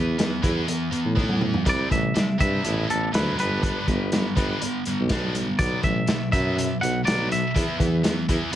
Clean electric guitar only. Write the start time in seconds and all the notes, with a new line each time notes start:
Already playing: B4
1.69 D5
1.92 E5
2.40 E5
2.90 A4
3.15 B4
3.40 B4
5.59 D5
5.84 E5
6.32 E5
6.81 F#5
7.05 D5
7.32 E5